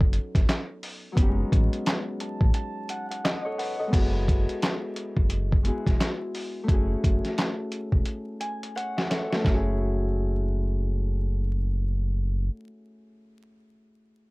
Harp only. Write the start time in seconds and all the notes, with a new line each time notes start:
Already playing: F#3 B3 C#4 D#4 A4
1.12 F#3 B3
1.17 C#4 D#4
1.22 G4
1.28 G#3
2.21 A5
2.54 A5
2.90 F#5
3.10 F#5
3.24 D#5
3.45 A4 C#5 D#5
3.58 B4 F#5
3.79 A4 D#5
3.87 G#3 B3
3.92 E4 F#4
3.97 G#4
5.63 G#3 B3 E4 F#4
5.68 G#4
6.64 A3 C#4
6.68 E4 F#4
6.73 G#4
8.40 G#5
8.76 C#5 F#5
8.97 E5
9.10 A4 C#5 E5
9.30 F#4 C#5
9.35 A3
9.40 C#4
9.44 E4
9.49 F#4
9.54 G#4